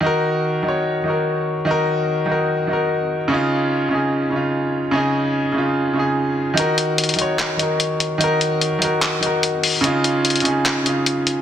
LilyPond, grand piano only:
\new Staff \with { instrumentName = "Grand piano" } { \time 4/4 \key ees \minor \tempo 4 = 147 <ees ees' ges' bes'>4 r8 <ees ees' ges' des''>8. r16 <ees ees' ges' bes'>4 r8 | <ees ees' ges' bes'>4 r8 <ees ees' ges' bes'>8. r16 <ees ees' ges' bes'>4 r8 | <des des' ees' f'>4 r8 <des des' ees' aes'>8. r16 <des des' ees' f'>4 r8 | <des des' ees' aes'>4 r8 <des des' ees' f'>8. r16 <des des' ees' aes'>4 r8 |
<ees ees' ges' bes'>4 r8 <ees ees' ges' des''>8. r16 <ees ees' ges' bes'>4 r8 | <ees ees' ges' bes'>4 r8 <ees ees' ges' bes'>8. r16 <ees ees' ges' bes'>4 r8 | <des des' ees' f'>4 r8 <des des' ees' aes'>8. r16 <des des' ees' f'>4 r8 | }